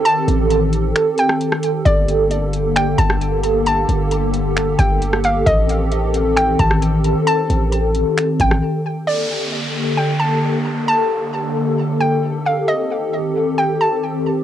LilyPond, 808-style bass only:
\new Staff \with { instrumentName = "808-style bass" } { \clef bass \time 4/4 \key g \minor \tempo 4 = 133 r8 a,,4. r2 | g,,2~ g,,8 g,,4.~ | g,,8 g,,2 g,,4. | a,,2~ a,,8 a,,4~ a,,16 r16 |
r8 a,,4~ a,,16 r8. a,,8 r4 | r1 | r1 | r1 | }